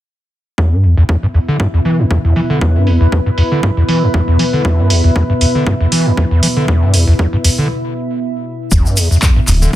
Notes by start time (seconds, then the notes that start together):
0.58 E2 B2 B3 E4 E5, kick
0.72 G2
0.83 E2, open hi-hat
0.97 E2
1.09 E2, kick
1.23 G2
1.32 E2 B4, open hi-hat
1.48 D3
1.60 G2, kick
1.74 E2
1.85 E3, open hi-hat
1.99 E2
2.05 B5
2.11 E2, kick
2.25 E2
2.36 E3, open hi-hat
2.50 D3
2.61 E2, kick
2.75 G2
2.87 E2, open hi-hat
3.01 E2
3.12 E2, kick
3.26 G2
3.38 E2, open hi-hat
3.52 D3
3.63 G2, kick
3.77 E2
3.88 E3, open hi-hat
4.02 E2
4.14 E2, kick
4.28 E2
4.39 E3, open hi-hat
4.53 D3
4.65 E2, kick
4.79 G2
4.90 E2, open hi-hat
5.04 E2
5.16 E2, kick
5.30 G2
5.41 E2, open hi-hat
5.55 D3
5.67 G2, kick
5.80 E2
5.92 E3, open hi-hat
6.06 E2
6.17 E2, kick
6.31 E2
6.43 E3, open hi-hat
6.57 D3
6.68 E2, kick
6.82 G2
6.94 E2, open hi-hat
7.08 E2
7.19 E2, kick
7.33 G2
7.44 E2, open hi-hat
7.58 D3
8.71 E1 E2 B2 B3 E4 E5, kick, shaker
8.86 G2, shaker
8.97 E2, open hi-hat, shaker
9.11 E2, shaker
9.22 E2, kick, clap, shaker
9.36 G2
9.48 D1 E2, clap, open hi-hat, shaker
9.62 D3, shaker